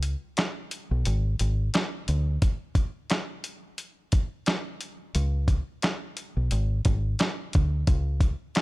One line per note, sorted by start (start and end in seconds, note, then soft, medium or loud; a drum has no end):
0.00 0.14 C#2 loud
0.00 closed hi-hat medium
0.37 snare loud
0.37 clap medium
0.37 closed hi-hat medium
0.71 closed hi-hat medium
0.91 1.04 B1 medium
1.05 1.35 G#1 loud
1.05 closed hi-hat medium
1.39 1.69 G#1 medium
1.39 closed hi-hat medium
1.74 snare loud
1.74 clap medium
1.74 closed hi-hat medium
2.08 2.37 D2 loud
2.08 closed hi-hat medium
2.42 kick loud
2.42 closed hi-hat loud
2.75 kick loud
2.75 closed hi-hat medium
3.10 snare loud
3.10 clap medium
3.10 closed hi-hat medium
3.44 closed hi-hat medium
3.78 closed hi-hat medium
4.12 kick loud
4.12 closed hi-hat medium
4.46 snare loud
4.46 clap medium
4.46 closed hi-hat medium
4.81 closed hi-hat medium
5.15 5.60 C#2 loud
5.15 closed hi-hat medium
5.48 kick loud
5.48 closed hi-hat medium
5.82 snare loud
5.82 clap medium
5.82 closed hi-hat medium
6.17 closed hi-hat medium
6.37 6.49 B1 medium
6.51 6.80 G#1 loud
6.51 closed hi-hat medium
6.85 7.14 G#1 medium
6.85 kick loud
6.85 closed hi-hat medium
7.19 snare loud
7.19 clap medium
7.19 closed hi-hat medium
7.53 7.83 D2 loud
7.53 kick loud
7.53 closed hi-hat medium
7.87 8.32 C#2 loud
7.87 kick loud
7.87 closed hi-hat medium
8.21 kick loud
8.21 closed hi-hat medium
8.55 snare loud
8.55 clap medium
8.55 closed hi-hat medium